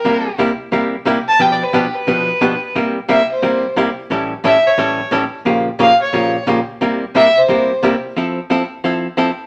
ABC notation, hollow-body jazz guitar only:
X:1
M:4/4
L:1/16
Q:"Swing" 1/4=177
K:Cmix
V:1 name="Hollow-body jazz guitar"
[C,G,B,EG]2 z2 [C,G,B,EG] z3 [C,G,B,EG]2 z2 [C,G,B,EG] z3 | [=B,,F,=B,DG=B]2 z2 [B,,F,B,DGB] z3 [B,,F,B,DGB]2 z2 [B,,F,B,DGB] z3 | [C,G,B,EG]2 z2 [C,G,B,EG] z3 [C,G,B,EG]2 z2 [C,G,B,EG] z3 | [A,,E,G,^CEA]2 z2 [A,,E,G,CEA] z3 [A,,E,G,CEA]2 z2 [A,,E,G,CEA] z3 |
[B,,_D,F,B,FG]2 z2 [B,,D,F,B,FG] z3 [B,,D,F,B,FG]2 z2 [B,,D,F,B,FG] z3 | [C,G,B,EG]2 z2 [C,G,B,EG] z3 [C,G,B,EG]2 z2 [C,G,B,EG] z3 | [F,CEA]2 z2 [F,CEA] z3 [F,CEA]2 z2 [F,CEA] z3 |]